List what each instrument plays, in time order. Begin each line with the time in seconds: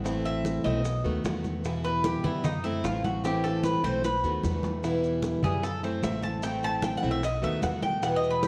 Already playing: upright bass A1, cuban tres F#5
0.04 steel-string acoustic guitar E3 A3 C4 E4, high bongo, high conga, maracas
0.25 cuban tres E5, high bongo, high conga, maracas
0.45 high bongo, high conga, maracas
0.64 upright bass B1, steel-string acoustic guitar A3 C4 E4, cuban tres D#5, high bongo, high conga, maracas
0.84 muted steel-string acoustic guitar stroke, high bongo, high conga, maracas
1.04 upright bass D#2, steel-string acoustic guitar D#3 A3 B3 F#4, high bongo, high conga, maracas
1.24 upright bass E2, steel-string acoustic guitar D#3 A3 B3 F#4, high bongo, low bongo, high conga, maracas
1.44 high conga, maracas
1.64 steel-string acoustic guitar B2 E3 G3 B3 E4, high bongo, high conga, maracas
1.84 cuban tres B4, high conga, maracas
2.04 cuban tres G4, high bongo, high conga, maracas
2.24 upright bass F#2, steel-string acoustic guitar E3 G3 B3 E4, cuban tres E4, high conga, low conga, maracas
2.44 cuban tres D#4, muted steel-string acoustic guitar stroke, high bongo, high conga, low conga, maracas
2.64 steel-string acoustic guitar A3 C4 E4, cuban tres E4, high conga, maracas
2.84 upright bass A1, steel-string acoustic guitar E3 A3 C4 E4, cuban tres F4, high bongo, low bongo, high conga, maracas
3.04 cuban tres F#4, high conga, maracas
3.24 steel-string acoustic guitar E3 A3 C4 E4, cuban tres G4, high bongo, high conga, maracas
3.44 cuban tres A4, high bongo, high conga, maracas
3.64 cuban tres B4, low bongo, high conga, maracas
3.84 upright bass B1, steel-string acoustic guitar A3 C4 E4, cuban tres C5, high conga, maracas
4.03 cuban tres B4, muted steel-string acoustic guitar stroke, low bongo, high conga, maracas
4.23 upright bass D#2, steel-string acoustic guitar D#3 A3 B3 F#4, high conga, maracas
4.44 upright bass E2, steel-string acoustic guitar D#3 A3 B3 F#4, low bongo, high conga, maracas
4.63 low bongo, high conga, maracas
4.83 steel-string acoustic guitar B2 E3 G3 B3 E4, high bongo, high conga, maracas
5.03 high conga, maracas
5.22 high bongo, high conga, maracas
5.43 upright bass F#2, steel-string acoustic guitar E3 G3 B3 E4, cuban tres G#4, high conga, low conga, maracas
5.63 cuban tres A4, muted steel-string acoustic guitar stroke, high bongo, high conga, maracas
5.83 steel-string acoustic guitar A3 C4 E4, cuban tres C5, high conga, maracas
6.03 upright bass A1, steel-string acoustic guitar E3 A3 C4 E4, cuban tres E5, high bongo, low bongo, high conga, maracas
6.23 cuban tres A5, high conga, maracas
6.42 steel-string acoustic guitar E3 A3 C4 E4, cuban tres G5, high bongo, high conga, maracas
6.62 cuban tres A5, high bongo, high conga, maracas
6.82 cuban tres G5, high bongo, high conga, maracas
6.97 cuban tres F#5
7.02 upright bass B1, steel-string acoustic guitar A3 C4 E4, high bongo, high conga, maracas
7.11 cuban tres E5
7.23 cuban tres D#5, muted steel-string acoustic guitar stroke, high bongo, high conga, maracas
7.42 upright bass D#2, steel-string acoustic guitar D#3 A3 B3 F#4, cuban tres E5, high bongo, high conga, maracas
7.62 upright bass E2, steel-string acoustic guitar D#3 A3 B3 F#4, cuban tres F#5, high bongo, low bongo, high conga, maracas
7.82 cuban tres G5, high conga, maracas
8.02 steel-string acoustic guitar B2 E3 G3 B3 E4, cuban tres F#5, high bongo, high conga, maracas
8.16 cuban tres D#5
8.23 high conga, maracas
8.30 cuban tres B4
8.43 cuban tres G4, high bongo, high conga, maracas